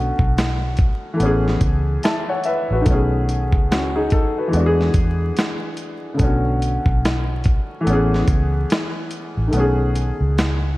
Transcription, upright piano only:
Already playing: D3 A3 B3 C#4 F#4
1.14 E3 A3
1.20 B3 C#4
1.26 G#4
2.04 E5 A5
2.29 C#5 F#5
2.45 B4 E5
2.73 F#4 B4
2.81 D#3 A3
2.88 B3 C#4
2.94 G#4
3.71 C#4 F#4
3.96 D#4 G#4
4.12 D#4 A4
4.38 F#4 B4
4.48 E3 G#3
4.54 B3 D4
4.60 F#4
4.66 G#4
6.14 C#3 A3
6.20 D3 B3 C#4
6.26 F#4
7.81 E3 A3
7.87 B3 C#4
7.93 G#4
9.48 D#3 A3
9.54 B3 C#4
9.60 G#4

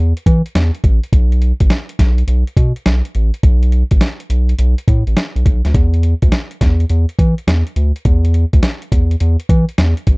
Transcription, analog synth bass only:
Already playing: E2
0.26 E3
0.55 E2
0.84 A1
1.13 B1
1.61 A1
1.99 B1
2.28 B1
2.57 B2
2.86 B1
3.15 A1
3.43 B1
3.91 A1
4.30 B1
4.59 B1
4.88 A2
5.07 A1
5.36 B1
5.46 B1
5.65 D2
5.74 E2
6.22 D2
6.61 E2
6.90 E2
7.19 E3
7.47 E2
7.76 D2
8.05 E2
8.53 D2
8.92 E2
9.21 E2
9.49 E3
9.78 E2
10.07 A1

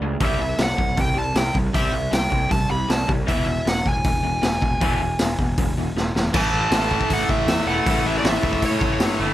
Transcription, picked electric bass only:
0.01 C#2
0.20 C2
0.39 C2
0.58 C2
0.78 C2
0.97 C2
1.16 C2
1.35 C2
1.55 C2
1.74 C2
1.92 C2
2.13 C2
2.31 C2
2.50 C2
2.71 C2
2.90 C2
3.08 C2
3.28 E1
3.47 E1
3.66 E1
3.85 E1
4.04 E1
4.23 E1
4.43 E1
4.62 E1
4.81 E1
5.00 E1
5.20 E1
5.38 E1
5.57 E1
5.76 E1
5.96 E1
6.15 E1
6.33 A1
6.53 A1
6.71 A1
7.10 A1
7.29 A1
7.47 E2
7.66 E1
7.86 A1
8.04 A1
8.24 A1
8.43 E1
8.62 A2
8.81 A1
9.00 G2
9.20 G1

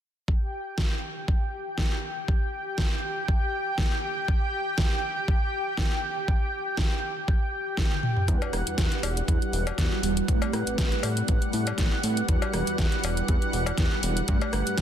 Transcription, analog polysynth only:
8.27 G3 D4 E4 F#4 B4
10.03 G3 D4 E4 F#4 B4
10.27 A3 C4 E4 G4 B4
12.03 A3 C4 E4 G4 B4
12.28 G3 E4 F#4 B4
14.03 G3 D4 E4 F#4 B4
14.27 A3 D4 B4

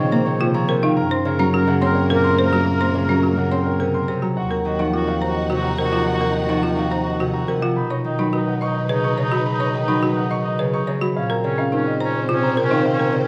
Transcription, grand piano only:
Already playing: D#5
0.12 A#5
0.27 C#5
0.41 C5
0.55 A#5
0.69 C5
0.84 F5
0.97 A#5
1.12 C6
1.26 C#5
1.39 A#5
1.53 A#4
1.68 F#5
1.81 C6
1.95 C#5
2.10 C5
2.24 C6
2.38 C5
2.52 A#5
2.66 A#5
2.80 C6
2.95 C#5
3.09 A#5
3.23 A#4
3.38 F#5
3.51 C6
3.66 C#5
3.80 C5
3.94 C6
4.09 C5
4.23 A#5
4.37 F#5
4.51 A#5
4.66 D#5
4.80 F#5
4.94 A#4
5.08 F5
5.22 A#5
5.36 D#5
5.50 C5
5.64 A#5
5.79 C5
5.92 F#5
6.07 F#5
6.21 A#5
6.35 D#5
6.50 F#5
6.63 A#4
6.77 F5
6.91 A#5
7.06 D#5
7.20 C5
7.34 A#5
7.48 C5
7.62 F#5
7.76 B5
7.91 C#6
8.05 D#5
8.19 B5
8.34 B4
8.48 F#5
8.62 C#6
8.76 D#5
8.90 C#5
9.04 C#6
9.18 C#5
9.32 B5
9.46 B5
9.60 C#6
9.74 D#5
9.88 B5
10.03 B4
10.17 F#5
10.31 C#6
10.45 D#5
10.59 C#5
10.74 C#6
10.88 C#5
11.02 B5
11.16 F5
11.30 A#5
11.44 C#5
11.59 F5
11.73 A#4
11.87 D#5
12.01 A#5
12.15 C#5
12.29 C5
12.43 A#5
12.57 C5
12.72 F5
12.86 F5
13.00 A#5
13.14 C#5

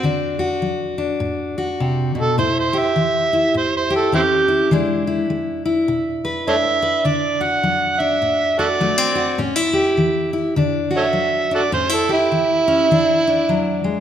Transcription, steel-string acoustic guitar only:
Already playing: F#4
0.03 D3 D4
0.39 F#4
0.62 F#3
0.98 D4
1.20 A2
1.58 F#4
1.80 C3
2.15 B2
2.38 A2 E4
2.73 G4
2.96 E3
3.33 E4
3.54 A2
3.90 G4
4.12 E3 C#4
4.48 E4
4.71 E3 G#3 D4 E4
5.07 E4
5.30 G#3
5.65 E4
5.88 B2
6.25 B4
6.47 G#3 D4
6.82 B4
7.05 D3 D4
7.41 F#4
7.63 F#3
8.00 D4
8.22 A2
8.59 F#4
8.80 F#3 A3
8.98 C4
9.15 F#4
9.38 A2 C#4
9.56 E4
9.73 G4
9.97 E3
10.33 E4
10.56 D3 D4
10.91 F#4
11.13 F#3
11.51 D4
11.72 A2 C#4
11.89 E4
12.09 G4
12.32 E3
12.68 C#4
12.91 E3 D4
13.27 D4
13.49 F#3
13.84 G#3

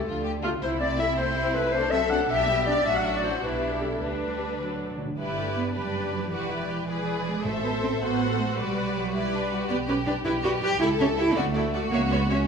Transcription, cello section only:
0.06 D3
0.62 C3
2.30 B2
2.86 A2
3.44 B2
4.02 D3
5.18 G3
5.38 A3
5.56 B3
5.75 G3
6.13 F#3
6.31 E3
7.27 G#3
7.46 A3
7.64 B3
7.83 C4
8.02 B3
8.39 A3
8.58 G3
8.96 F#3
9.14 G3
9.69 B3
9.88 C#4
10.06 D4
10.25 E4
10.43 F#4
10.62 G4
10.81 E4
11.00 C#4
11.18 E4
11.37 A3
11.92 A#3
12.11 B3
12.30 C#4

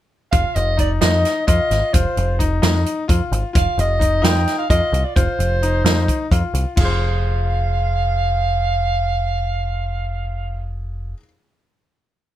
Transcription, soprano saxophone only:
0.32 F5
0.56 D#5
0.80 D5
1.01 D#5
1.47 D#5
1.94 C5
3.57 F5
3.80 D#5
4.24 G5
4.59 F5
4.70 D#5
5.04 D5
5.16 C5
6.77 F5

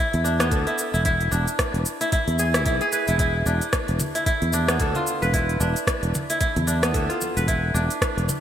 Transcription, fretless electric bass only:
0.14 E2
0.52 D2
0.94 E1
1.32 E1
1.74 E1
2.28 E2
2.66 B1
3.08 E1
3.46 E1
3.89 E1
4.42 E2
4.80 D2
5.23 E1
5.61 E1
6.03 E1
6.56 E2
6.94 D2
7.37 E1
7.74 E1
8.17 E1

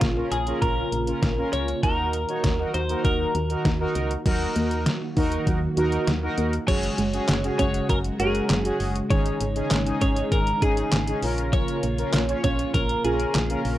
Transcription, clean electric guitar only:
Already playing: F4
0.32 G#4
0.62 A#4
1.53 C#5
1.83 A#4
2.74 C5
3.05 A#4
6.68 C#5
7.59 C#5
7.90 A#4
8.20 G#4
9.11 C#5
10.02 C#5
10.32 A#4
10.62 G#4
11.53 C#5
12.44 C#5
12.74 A#4
13.05 G#4

